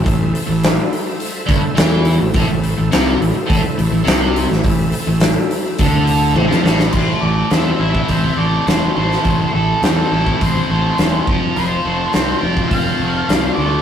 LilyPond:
<<
  \new Staff \with { instrumentName = "Lead electric guitar" } { \time 4/4 \key a \minor \tempo 4 = 104 r1 | r1 | r1 | c''8 d''8 e''8 e''4 d''8 c''8 c''8~ |
c''8 a'8 a'4 c''4. r8 | c''4. g''8 f''4. d''8 | }
  \new Staff \with { instrumentName = "Tonewheel organ" } { \time 4/4 \key a \minor <a' c'' e''>1 | <e' a' c''>1 | <c' e' a'>1 | r1 |
r1 | r1 | }
  \new Staff \with { instrumentName = "Distorted electric guitar" } { \clef bass \time 4/4 \key a \minor a,8 r16 a,8 r4 r16 g,16 r16 e8. a,16 | a,16 a,8 a,16 c8 a,16 r16 a,16 r16 a,16 a,16 c8. a,16 | a,8 r16 a,8 r8. d4 a,16 f16 a,8 | a,8 a8 c'8 e'8 c'8 a8 e8 a8 |
a,8 a8 c'8 e'8 c'8 a8 e8 f8 | f8 a8 c'8 f'8 c'8 a8 f8 a8 | }
  \new Staff \with { instrumentName = "Fingered electric bass" } { \clef bass \time 4/4 \key a \minor a,,8 r16 a,,8 r4 r16 g,,16 r16 e,8. a,,16 | a,,16 a,,8 a,,16 c,8 a,,16 r16 a,,16 r16 a,,16 a,,16 c,8. a,,16 | a,,8 r16 a,,8 r8. d,4 a,,16 f,16 a,,8 | a,,8 a,,8 e,8 a,,8 a,,8 a,,8 e,,8 a,,8 |
a,,8 a,,8 e,8 a,,8 a,,8 a,,8 e,,8 f,,8 | f,,8 f,,8 c,8 f,,8 f,,8 f,,8 c,8 d,8 | }
  \new DrumStaff \with { instrumentName = "Drums" } \drummode { \time 4/4 <hho bd>8 hho8 <hho sn>8 hho8 hho8 <hho bd>8 <hho sn>8 hho8 | <hho bd>8 hho8 <hho sn>8 hho8 <hho bd>8 hho8 <hho sn>8 hho16 sn16 | <hho bd>8 hho8 <hho sn>8 hho8 <hho bd>8 hho8 tommh16 sn16 sn16 sn16 | <cymc bd>4 <hho sn>8. bd16 <hho bd>4 <hho sn>8. sn16 |
<hho bd>4 <hho sn>8. bd16 <hho bd>4 <hho sn>8 bd8 | hho4 <hho sn>8. bd16 <hho bd>4 <hho sn>4 | }
>>